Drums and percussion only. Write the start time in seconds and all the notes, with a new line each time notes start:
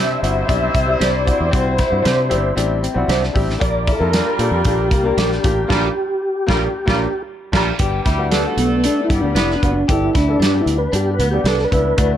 0.24 closed hi-hat
0.49 kick, closed hi-hat
0.75 kick, closed hi-hat
1.01 snare, closed hi-hat
1.27 kick, closed hi-hat
1.53 kick, closed hi-hat
1.78 kick, snare, closed hi-hat
2.05 snare, closed hi-hat
2.31 closed hi-hat
2.58 closed hi-hat
2.84 closed hi-hat
3.09 snare, closed hi-hat
3.24 snare
3.36 kick, open hi-hat
3.50 snare
3.61 kick, closed hi-hat
3.87 kick, closed hi-hat
4.13 snare, closed hi-hat
4.39 closed hi-hat
4.65 kick, closed hi-hat
4.91 kick, closed hi-hat
5.18 snare, closed hi-hat
5.32 snare
5.44 kick, closed hi-hat
5.70 kick, snare, crash
6.49 kick, snare
6.88 kick, snare
7.53 kick, snare, crash
7.79 kick, closed hi-hat
8.06 kick, snare, closed hi-hat
8.32 snare, closed hi-hat
8.58 closed hi-hat
8.84 closed hi-hat
9.10 kick, closed hi-hat
9.36 snare, closed hi-hat
9.51 snare
9.63 kick, closed hi-hat
9.89 kick, closed hi-hat
10.15 kick, snare, closed hi-hat
10.42 snare, closed hi-hat
10.67 closed hi-hat
10.93 closed hi-hat
11.20 closed hi-hat
11.45 snare, closed hi-hat
11.59 snare
11.72 kick, closed hi-hat
11.98 kick, closed hi-hat